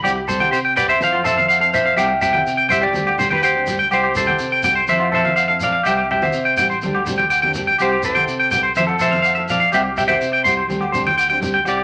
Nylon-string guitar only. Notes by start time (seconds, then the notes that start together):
0.02 G3 C4 E4 G4
0.27 G3 C4 E4 G4
0.40 C4 E4 G4
0.75 G3 C4 E4 G4
0.99 F3 C4 E4 A4
1.22 F3 C4 E4 A4
1.60 C4 E4 A4
1.72 F3 C4 E4 A4
1.96 G3 C4 E4 G4
2.21 G3 C4 E4 G4
2.33 C4 E4 G4
2.69 G3 C4 E4 G4
2.93 G3 C4 D4 G4
3.18 G3 C4 D4 G4
3.55 C4 D4 G4
3.67 G3 C4 D4 G4
3.90 G3 C4 E4 G4
4.16 G3 C4 E4 G4
4.27 C4 E4 G4
4.64 G3 C4 E4 G4
4.89 F3 C4 E4 A4
5.13 F3 C4 E4 A4
5.49 C4 E4 A4
5.61 C4 E4 A4, muted nylon-string guitar stroke
5.87 G3 C4 E4 G4
6.10 G3 C4 E4 G4
6.22 C4 E4 G4
6.59 G3 C4 E4 G4
6.84 G3 C4 D4 G4
7.07 G3 C4 D4 G4
7.44 C4 D4 G4
7.55 G3 C4 D4 G4
7.80 G3 C4 E4 G4
8.04 G3 C4 E4 G4
8.15 C4 E4 G4
8.51 G3 C4 E4 G4
8.77 F3 C4 E4 A4
9.01 F3 C4 E4 A4
9.38 E4 A4, muted nylon-string guitar stroke
9.49 F3 C4 E4 A4
9.72 G3 C4 E4 G4
9.97 G3 C4 E4 G4
10.09 C4 E4 G4
10.45 G3 C4 E4 G4
10.67 G3 C4 D4 G4
10.92 G3 C4 D4 G4
11.30 C4 D4 G4
11.40 G3 C4 D4 G4
11.65 G3 C4 E4 G4